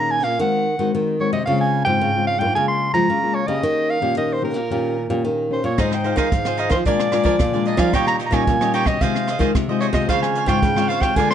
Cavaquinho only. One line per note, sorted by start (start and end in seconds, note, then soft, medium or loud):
5.78 6.03 D#4 medium
5.78 6.03 G#4 medium
5.78 6.04 C5 medium
5.78 6.05 F5 medium
6.04 6.16 D#4 soft
6.04 6.17 G#4 medium
6.04 6.17 C5 soft
6.04 6.17 F5 medium
6.17 6.27 D#4 medium
6.17 6.28 G#4 medium
6.17 6.28 C5 medium
6.17 6.28 F5 medium
6.46 6.57 G#4 soft
6.46 6.58 C5 soft
6.46 6.58 F5 medium
6.58 6.71 D#4 medium
6.58 6.70 G#4 medium
6.58 6.70 C5 medium
6.58 6.68 F5 medium
6.70 6.85 G#4 soft
6.70 6.84 C5 soft
6.70 6.84 F5 soft
6.86 7.10 D4 medium
6.86 7.11 A#4 medium
6.86 7.12 D5 medium
6.86 7.12 G#5 medium
7.12 7.24 D4 soft
7.12 7.24 A#4 medium
7.12 7.24 D5 medium
7.12 7.25 G#5 medium
7.25 7.35 D4 medium
7.25 7.35 A#4 medium
7.25 7.35 D5 medium
7.25 7.36 G#5 medium
7.53 7.66 A#4 soft
7.53 7.66 D5 soft
7.53 7.66 G#5 soft
7.66 7.79 D4 soft
7.66 7.79 A#4 soft
7.66 7.79 D5 medium
7.66 7.77 G#5 medium
7.79 7.93 A#4 medium
7.79 7.93 D5 medium
7.79 7.92 G#5 medium
7.94 8.18 D#4 medium
7.94 8.19 G4 medium
7.94 8.20 C#5 medium
7.94 8.20 D#5 medium
8.19 8.31 D#4 soft
8.19 8.31 G4 soft
8.19 8.31 C#5 soft
8.19 8.32 D#5 medium
8.32 8.42 D#4 medium
8.32 8.42 G4 medium
8.32 8.42 C#5 medium
8.32 8.43 D#5 medium
8.62 8.74 G4 soft
8.62 8.74 C#5 soft
8.62 8.74 D#5 soft
8.74 8.87 D#4 medium
8.74 8.87 G4 medium
8.74 8.87 C#5 medium
8.74 8.86 D#5 medium
8.87 9.01 G4 soft
8.87 9.01 C#5 soft
8.87 9.00 D#5 soft
9.01 9.27 F4 medium
9.01 9.28 G#4 medium
9.01 9.28 C5 medium
9.01 9.28 D#5 medium
9.28 9.39 F4 soft
9.28 9.39 G#4 medium
9.28 9.40 C5 medium
9.28 9.40 D#5 medium
9.40 9.50 F4 medium
9.40 9.50 G#4 medium
9.40 9.50 C5 medium
9.40 9.51 D#5 medium
9.69 9.80 G#4 soft
9.69 9.80 C5 soft
9.69 9.81 D#5 soft
9.80 9.94 F4 soft
9.80 9.94 G#4 medium
9.80 9.94 C5 medium
9.80 9.93 D#5 medium
9.94 10.08 G#4 medium
9.94 10.08 C5 medium
9.94 10.07 D#5 medium
10.09 10.35 F4 medium
10.09 10.35 C5 medium
10.09 10.36 C#5 medium
10.09 10.36 F5 medium
10.36 10.47 F4 soft
10.36 10.48 C5 soft
10.36 10.48 C#5 medium
10.36 10.48 F5 medium
10.48 10.58 F4 medium
10.48 10.58 C5 medium
10.48 10.58 C#5 medium
10.48 10.58 F5 medium
10.78 10.89 C5 soft
10.78 10.89 C#5 medium
10.78 10.89 F5 medium
10.89 11.02 F4 medium
10.89 11.02 C5 medium
10.89 11.02 C#5 medium
10.89 11.01 F5 medium
11.03 11.16 C5 soft
11.03 11.16 C#5 soft
11.03 11.15 F5 medium
11.17 11.34 G#4 medium
11.17 11.34 A#4 medium
11.17 11.34 D5 medium
11.17 11.34 F5 medium